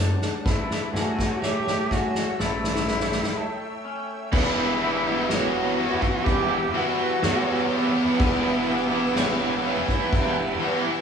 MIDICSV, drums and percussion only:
0, 0, Header, 1, 2, 480
1, 0, Start_track
1, 0, Tempo, 966184
1, 233, Time_signature, 4, 2, 24, 8
1, 5471, End_track
2, 0, Start_track
2, 0, Title_t, "Drums"
2, 107, Note_on_c, 9, 38, 93
2, 157, Note_off_c, 9, 38, 0
2, 227, Note_on_c, 9, 36, 108
2, 229, Note_on_c, 9, 38, 99
2, 277, Note_off_c, 9, 36, 0
2, 279, Note_off_c, 9, 38, 0
2, 352, Note_on_c, 9, 38, 101
2, 401, Note_off_c, 9, 38, 0
2, 472, Note_on_c, 9, 38, 99
2, 522, Note_off_c, 9, 38, 0
2, 589, Note_on_c, 9, 36, 71
2, 592, Note_on_c, 9, 38, 96
2, 639, Note_off_c, 9, 36, 0
2, 642, Note_off_c, 9, 38, 0
2, 708, Note_on_c, 9, 38, 104
2, 758, Note_off_c, 9, 38, 0
2, 831, Note_on_c, 9, 38, 114
2, 881, Note_off_c, 9, 38, 0
2, 949, Note_on_c, 9, 36, 84
2, 950, Note_on_c, 9, 38, 90
2, 999, Note_off_c, 9, 36, 0
2, 1000, Note_off_c, 9, 38, 0
2, 1068, Note_on_c, 9, 38, 98
2, 1118, Note_off_c, 9, 38, 0
2, 1191, Note_on_c, 9, 38, 113
2, 1241, Note_off_c, 9, 38, 0
2, 1312, Note_on_c, 9, 38, 119
2, 1361, Note_off_c, 9, 38, 0
2, 1369, Note_on_c, 9, 38, 120
2, 1419, Note_off_c, 9, 38, 0
2, 1429, Note_on_c, 9, 38, 103
2, 1478, Note_off_c, 9, 38, 0
2, 1492, Note_on_c, 9, 38, 113
2, 1541, Note_off_c, 9, 38, 0
2, 1549, Note_on_c, 9, 38, 113
2, 1599, Note_off_c, 9, 38, 0
2, 1607, Note_on_c, 9, 38, 103
2, 1656, Note_off_c, 9, 38, 0
2, 2146, Note_on_c, 9, 49, 127
2, 2146, Note_on_c, 9, 57, 97
2, 2150, Note_on_c, 9, 36, 116
2, 2196, Note_off_c, 9, 49, 0
2, 2196, Note_off_c, 9, 57, 0
2, 2200, Note_off_c, 9, 36, 0
2, 2393, Note_on_c, 9, 57, 67
2, 2443, Note_off_c, 9, 57, 0
2, 2632, Note_on_c, 9, 38, 122
2, 2632, Note_on_c, 9, 57, 78
2, 2681, Note_off_c, 9, 38, 0
2, 2681, Note_off_c, 9, 57, 0
2, 2872, Note_on_c, 9, 57, 61
2, 2922, Note_off_c, 9, 57, 0
2, 2992, Note_on_c, 9, 36, 85
2, 3041, Note_off_c, 9, 36, 0
2, 3111, Note_on_c, 9, 57, 83
2, 3112, Note_on_c, 9, 36, 105
2, 3160, Note_off_c, 9, 57, 0
2, 3161, Note_off_c, 9, 36, 0
2, 3352, Note_on_c, 9, 57, 71
2, 3402, Note_off_c, 9, 57, 0
2, 3590, Note_on_c, 9, 38, 127
2, 3590, Note_on_c, 9, 57, 94
2, 3640, Note_off_c, 9, 38, 0
2, 3640, Note_off_c, 9, 57, 0
2, 3833, Note_on_c, 9, 57, 72
2, 3883, Note_off_c, 9, 57, 0
2, 4073, Note_on_c, 9, 36, 127
2, 4073, Note_on_c, 9, 57, 97
2, 4123, Note_off_c, 9, 36, 0
2, 4123, Note_off_c, 9, 57, 0
2, 4311, Note_on_c, 9, 57, 79
2, 4361, Note_off_c, 9, 57, 0
2, 4550, Note_on_c, 9, 38, 119
2, 4550, Note_on_c, 9, 57, 99
2, 4599, Note_off_c, 9, 38, 0
2, 4599, Note_off_c, 9, 57, 0
2, 4790, Note_on_c, 9, 57, 68
2, 4839, Note_off_c, 9, 57, 0
2, 4911, Note_on_c, 9, 36, 84
2, 4960, Note_off_c, 9, 36, 0
2, 5028, Note_on_c, 9, 57, 100
2, 5031, Note_on_c, 9, 36, 113
2, 5077, Note_off_c, 9, 57, 0
2, 5080, Note_off_c, 9, 36, 0
2, 5269, Note_on_c, 9, 57, 77
2, 5319, Note_off_c, 9, 57, 0
2, 5471, End_track
0, 0, End_of_file